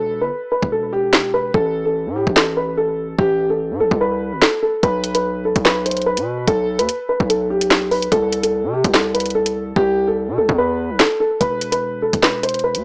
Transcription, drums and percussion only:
0.62 kick loud
1.13 snare loud
1.13 clap medium
1.54 kick loud
2.27 kick loud
2.36 snare loud
2.36 clap medium
3.19 kick loud
3.91 kick loud
4.42 snare loud
4.42 clap medium
4.83 kick loud
4.83 closed hi-hat medium
5.04 closed hi-hat medium
5.15 closed hi-hat medium
5.56 kick loud
5.56 closed hi-hat medium
5.65 snare loud
5.65 clap medium
5.86 closed hi-hat medium
5.91 closed hi-hat medium
5.97 closed hi-hat soft
6.01 closed hi-hat soft
6.17 closed hi-hat medium
6.47 kick loud
6.47 closed hi-hat medium
6.79 closed hi-hat medium
6.89 closed hi-hat medium
7.20 kick loud
7.30 closed hi-hat medium
7.61 closed hi-hat medium
7.71 snare loud
7.71 clap medium
7.91 open hi-hat soft
8.02 closed hi-hat medium
8.12 kick loud
8.12 closed hi-hat medium
8.32 closed hi-hat medium
8.43 closed hi-hat medium
8.84 kick loud
8.84 closed hi-hat medium
8.94 snare loud
8.94 clap medium
9.15 closed hi-hat medium
9.20 closed hi-hat medium
9.26 closed hi-hat soft
9.30 closed hi-hat soft
9.46 closed hi-hat medium
9.76 kick loud
10.49 kick loud
11.00 snare loud
11.00 clap medium
11.41 kick loud
11.41 closed hi-hat medium
11.61 closed hi-hat medium
11.72 closed hi-hat medium
12.13 kick loud
12.13 closed hi-hat medium
12.23 snare loud
12.23 clap medium
12.43 closed hi-hat medium
12.49 closed hi-hat medium
12.54 closed hi-hat soft
12.59 closed hi-hat soft
12.75 closed hi-hat medium

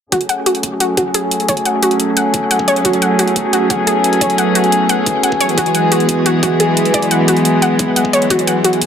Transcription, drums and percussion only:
0.12 kick loud
0.12 closed hi-hat medium
0.21 closed hi-hat soft
0.29 closed hi-hat medium
0.46 closed hi-hat medium
0.55 closed hi-hat soft
0.63 kick medium
0.63 closed hi-hat medium
0.80 closed hi-hat loud
0.97 kick loud
0.97 closed hi-hat medium
1.14 closed hi-hat medium
1.31 closed hi-hat medium
1.40 closed hi-hat soft
1.48 kick loud
1.48 closed hi-hat medium
1.57 closed hi-hat soft
1.65 closed hi-hat medium
1.83 closed hi-hat medium
1.91 closed hi-hat soft
2.00 closed hi-hat medium
2.17 closed hi-hat medium
2.34 kick loud
2.34 closed hi-hat medium
2.51 closed hi-hat medium
2.59 kick medium
2.68 closed hi-hat medium
2.76 closed hi-hat soft
2.85 kick loud
2.85 closed hi-hat medium
2.93 closed hi-hat soft
3.02 closed hi-hat medium
3.19 closed hi-hat medium
3.28 closed hi-hat soft
3.36 kick medium
3.36 closed hi-hat medium
3.53 closed hi-hat medium
3.70 kick loud
3.70 closed hi-hat medium
3.87 closed hi-hat medium
4.04 closed hi-hat medium
4.13 closed hi-hat soft
4.21 kick loud
4.21 closed hi-hat medium
4.30 closed hi-hat soft
4.38 closed hi-hat medium
4.55 closed hi-hat medium
4.64 closed hi-hat soft
4.72 closed hi-hat medium
4.89 closed hi-hat medium
5.06 kick loud
5.06 closed hi-hat medium
5.23 closed hi-hat medium
5.32 kick medium
5.41 closed hi-hat medium
5.49 closed hi-hat soft
5.58 kick loud
5.58 closed hi-hat medium
5.66 closed hi-hat soft
5.75 closed hi-hat medium
5.92 closed hi-hat medium
6.00 closed hi-hat soft
6.09 kick medium
6.09 closed hi-hat medium
6.26 closed hi-hat medium
6.43 kick loud
6.43 closed hi-hat medium
6.60 closed hi-hat medium
6.77 closed hi-hat medium
6.85 closed hi-hat soft
6.94 kick loud
6.94 closed hi-hat medium
7.02 closed hi-hat soft
7.11 closed hi-hat medium
7.28 closed hi-hat medium
7.37 closed hi-hat soft
7.45 closed hi-hat medium
7.62 closed hi-hat medium
7.79 kick loud
7.79 closed hi-hat medium
7.96 closed hi-hat medium
8.05 kick medium
8.13 closed hi-hat medium
8.22 closed hi-hat soft
8.30 kick loud
8.30 closed hi-hat medium
8.39 closed hi-hat soft
8.47 closed hi-hat medium
8.64 closed hi-hat medium
8.73 closed hi-hat soft
8.82 kick medium
8.82 closed hi-hat medium

